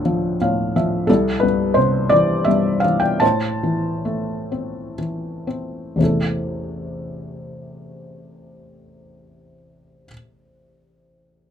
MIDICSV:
0, 0, Header, 1, 2, 480
1, 0, Start_track
1, 0, Key_signature, 0, "minor"
1, 0, Tempo, 690449
1, 754, Time_signature, 6, 3, 24, 8
1, 1715, Tempo, 756620
1, 2195, Tempo, 829876
1, 2675, Tempo, 925926
1, 3155, Tempo, 1036269
1, 4115, Tempo, 1016949
1, 6217, End_track
2, 0, Start_track
2, 0, Title_t, "Felt piano"
2, 0, Program_c, 0, 0
2, 0, Control_c, 0, 64, 127
2, 0, Note_on_c, 0, 38, 47
2, 0, Note_on_c, 0, 45, 39
2, 0, Note_on_c, 0, 50, 41
2, 0, Note_on_c, 0, 53, 42
2, 0, Note_on_c, 0, 65, 39
2, 0, Note_on_c, 0, 69, 59
2, 0, Note_on_c, 0, 72, 64
2, 0, Note_on_c, 0, 74, 62
2, 38, Note_off_c, 0, 53, 0
2, 38, Note_on_c, 0, 53, 45
2, 251, Note_off_c, 0, 69, 0
2, 256, Note_off_c, 0, 65, 0
2, 277, Note_off_c, 0, 45, 0
2, 288, Note_on_c, 0, 45, 40
2, 289, Note_on_c, 0, 77, 50
2, 508, Note_off_c, 0, 77, 0
2, 518, Note_off_c, 0, 53, 0
2, 529, Note_on_c, 0, 53, 44
2, 529, Note_on_c, 0, 76, 50
2, 727, Note_off_c, 0, 38, 0
2, 728, Note_off_c, 0, 50, 0
2, 742, Note_off_c, 0, 76, 0
2, 744, Note_off_c, 0, 45, 0
2, 745, Note_on_c, 0, 69, 60
2, 752, Note_off_c, 0, 53, 0
2, 759, Note_on_c, 0, 64, 42
2, 762, Control_c, 0, 64, 0
2, 763, Note_off_c, 0, 72, 0
2, 763, Note_off_c, 0, 74, 0
2, 763, Note_on_c, 0, 36, 49
2, 875, Control_c, 0, 64, 127
2, 972, Note_on_c, 0, 71, 63
2, 990, Note_off_c, 0, 69, 0
2, 994, Note_on_c, 0, 43, 41
2, 1211, Note_on_c, 0, 72, 60
2, 1225, Note_off_c, 0, 71, 0
2, 1231, Note_on_c, 0, 48, 43
2, 1441, Note_off_c, 0, 64, 0
2, 1456, Note_on_c, 0, 74, 76
2, 1467, Note_off_c, 0, 72, 0
2, 1475, Note_on_c, 0, 52, 46
2, 1700, Note_on_c, 0, 76, 65
2, 1711, Note_off_c, 0, 43, 0
2, 1717, Note_off_c, 0, 74, 0
2, 1721, Note_on_c, 0, 43, 39
2, 1926, Note_off_c, 0, 76, 0
2, 1928, Note_on_c, 0, 77, 63
2, 1949, Note_off_c, 0, 52, 0
2, 1958, Note_on_c, 0, 52, 41
2, 2051, Note_off_c, 0, 77, 0
2, 2051, Note_on_c, 0, 79, 66
2, 2172, Note_off_c, 0, 48, 0
2, 2173, Note_off_c, 0, 36, 0
2, 2179, Note_on_c, 0, 81, 68
2, 2183, Note_off_c, 0, 43, 0
2, 2189, Note_off_c, 0, 79, 0
2, 2191, Note_off_c, 0, 52, 0
2, 2191, Note_on_c, 0, 72, 45
2, 2194, Note_on_c, 0, 45, 45
2, 2202, Control_c, 0, 64, 0
2, 2285, Control_c, 0, 64, 127
2, 2432, Note_on_c, 0, 52, 36
2, 2674, Note_on_c, 0, 57, 35
2, 2915, Note_on_c, 0, 60, 32
2, 3128, Note_off_c, 0, 81, 0
2, 3133, Note_off_c, 0, 72, 0
2, 3149, Note_off_c, 0, 52, 0
2, 3157, Note_on_c, 0, 52, 28
2, 3376, Note_off_c, 0, 60, 0
2, 3383, Note_on_c, 0, 60, 29
2, 3608, Note_off_c, 0, 57, 0
2, 3609, Note_off_c, 0, 45, 0
2, 3609, Note_on_c, 0, 33, 33
2, 3614, Note_off_c, 0, 52, 0
2, 3617, Note_on_c, 0, 40, 28
2, 3619, Note_off_c, 0, 60, 0
2, 3622, Note_on_c, 0, 48, 27
2, 3629, Note_on_c, 0, 57, 27
2, 3634, Control_c, 0, 64, 0
2, 3639, Note_on_c, 0, 64, 28
2, 3645, Note_on_c, 0, 69, 34
2, 3713, Control_c, 0, 64, 127
2, 5519, Note_off_c, 0, 33, 0
2, 5527, Note_off_c, 0, 40, 0
2, 5533, Note_off_c, 0, 48, 0
2, 5540, Note_off_c, 0, 57, 0
2, 5550, Note_off_c, 0, 64, 0
2, 5556, Note_off_c, 0, 69, 0
2, 6217, End_track
0, 0, End_of_file